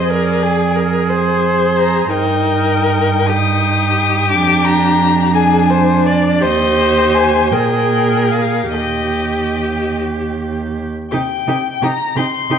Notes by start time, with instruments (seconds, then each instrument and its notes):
Already playing: cello F2, violin C5 D#5
0.09 viola G#4, violin A#4 D5
0.43 violin G#4
0.76 violin A#4
1.09 violin C5
1.78 violin A#5
2.13 cello G2, viola D#4, violin A#4 G5
3.26 viola D#4, violin G4 D#6
4.32 cello F2, viola D4, violin D6
4.65 violin A#5
5.34 viola D4, violin G#4 G#5
5.70 violin C5
6.06 violin D5
6.41 cello D#2, viola G4, violin C5 D#5
7.14 violin G#5
7.51 cello A#2, viola G#4, violin A#4 G5
8.31 violin F5
8.73 cello D#2, violin G4 D#5, viola G4
11.11 cello C3, viola D#4, violin G4 G5
11.47 cello C3, viola D#4, violin G4
11.82 cello C3, viola D#4, violin G4 A#5
12.16 cello C3, viola D#4, violin G4 C6
12.49 cello C3, viola D#4, violin G4